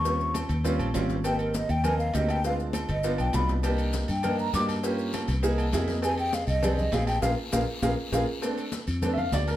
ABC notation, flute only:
X:1
M:4/4
L:1/8
Q:1/4=201
K:Bbmix
V:1 name="Flute"
_d'2 z6 | g B e g a f e g | f z2 e2 g =b z | z3 g2 b d' z |
z8 | a g f e d e f g | f z f z f z f z | [K:Dphr] z8 |]